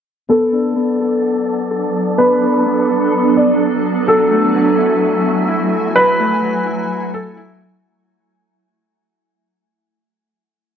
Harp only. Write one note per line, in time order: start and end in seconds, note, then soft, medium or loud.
0.29 0.75 B3 loud
0.52 2.41 D4 medium
0.76 2.17 B3 medium
1.00 1.70 A4 medium
1.71 2.89 A4 medium
2.18 2.65 B3 medium
2.42 5.22 D4 medium
2.66 5.76 B3 medium
2.89 3.60 A4 medium
3.60 5.80 A4 medium
4.07 4.53 F#3 medium
4.31 6.19 A3 medium
4.54 5.95 F#3 medium
4.78 5.48 E4 medium
5.48 6.66 E4 medium
5.96 6.42 F#3 medium
6.19 9.52 A3 medium
6.43 7.90 F#3 medium
6.66 7.37 E4 medium
7.37 9.98 E4 medium